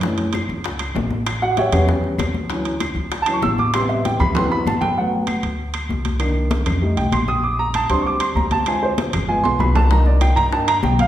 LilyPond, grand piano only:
<<
  \new Staff \with { instrumentName = "Grand piano" } { \time 4/4 \key d \major \tempo 4 = 194 r1 | r8 <fis' fis''>8 <g' cis'' e'' g''>4 r2 | r2 \tuplet 3/2 { r8 a''8 cis'''8 } e'''8 d'''8 | c'''8 e''8 g''8 b''8 c'''8 b''8 a''8 g''8 |
\key c \lydian fis''8 r2. r8 | r2 r8 g''8 c'''8 ees'''8 | d'''8 bes''8 a''8 c'''8 <cis''' d'''>8 c'''8 bes''8 a''8 | aes''8 c''8 r4 aes''8 c'''8 b''8 a''8 |
bes''8 d''8 g''8 bes''8 a''8 bes''8 g''8 f''8 | }
  \new Staff \with { instrumentName = "Grand piano" } { \time 4/4 \key d \major <e a cis'>8 r2. r8 | r4. <g b cis'>4. r4 | <e fis cis'>8 r2 <e fis cis'>8 r4 | <c g b>2 <c e fis b>8 r4. |
\key c \lydian <fis a b>4. r2 r8 | <ees bes d'>2 <g a ees'>8 r4. | r4. <g c' d'>2~ <g c' d'>8 | <aes c' f'>4. r8 <aes b f'>2 |
<bes d' ees'>2 <bes d' ees'>8 r4. | }
>>